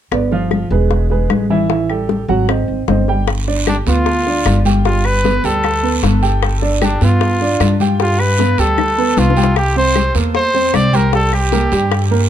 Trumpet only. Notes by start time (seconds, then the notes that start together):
3.68 D4
3.88 F4
4.86 F4
5.06 B4
5.45 A4
6.84 D4
7.04 F4
8.01 F4
8.20 B4
8.59 A4
9.18 F4
9.58 G4
9.78 C5
10.36 C5
10.75 D5
10.95 A#4
11.15 A4
11.34 G4